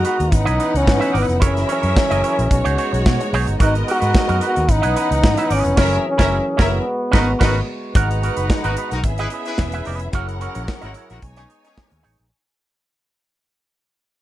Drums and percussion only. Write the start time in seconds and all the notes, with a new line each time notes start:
0.05 closed hi-hat
0.20 closed hi-hat
0.32 kick, closed hi-hat
0.47 closed hi-hat
0.60 closed hi-hat
0.76 closed hi-hat
0.87 kick, snare
1.02 closed hi-hat
1.15 open hi-hat
1.30 closed hi-hat
1.42 kick, closed hi-hat
1.57 snare, closed hi-hat
1.69 closed hi-hat
1.83 closed hi-hat
1.97 kick, snare
2.11 closed hi-hat
2.24 closed hi-hat
2.39 closed hi-hat
2.51 kick, closed hi-hat
2.66 closed hi-hat
2.78 closed hi-hat
2.94 closed hi-hat
3.06 kick, snare
3.21 closed hi-hat
3.34 open hi-hat
3.47 closed hi-hat
3.60 kick, closed hi-hat
3.75 closed hi-hat
3.88 closed hi-hat
4.02 closed hi-hat
4.15 kick, snare
4.29 closed hi-hat
4.41 closed hi-hat
4.56 closed hi-hat
4.69 kick, closed hi-hat
4.83 closed hi-hat
4.96 closed hi-hat
5.12 closed hi-hat
5.24 kick, snare
5.37 closed hi-hat
5.50 open hi-hat
5.65 closed hi-hat
5.77 kick, snare, crash
6.19 kick, snare
6.59 kick, snare
7.13 kick, snare
7.41 kick, snare, crash
7.95 kick, closed hi-hat
8.11 closed hi-hat
8.23 closed hi-hat
8.37 closed hi-hat
8.50 kick, snare
8.64 closed hi-hat
8.77 closed hi-hat
8.91 closed hi-hat
9.04 kick, closed hi-hat
9.18 closed hi-hat
9.30 closed hi-hat
9.46 closed hi-hat
9.58 kick, snare
9.72 closed hi-hat
9.85 open hi-hat
9.99 closed hi-hat
10.13 kick, closed hi-hat
10.29 closed hi-hat
10.41 closed hi-hat
10.55 closed hi-hat
10.68 kick, snare
10.82 closed hi-hat
10.94 closed hi-hat
11.10 closed hi-hat
11.22 kick, closed hi-hat
11.36 closed hi-hat
11.50 closed hi-hat
11.65 closed hi-hat
11.78 kick, snare
11.91 closed hi-hat
12.04 open hi-hat
12.18 closed hi-hat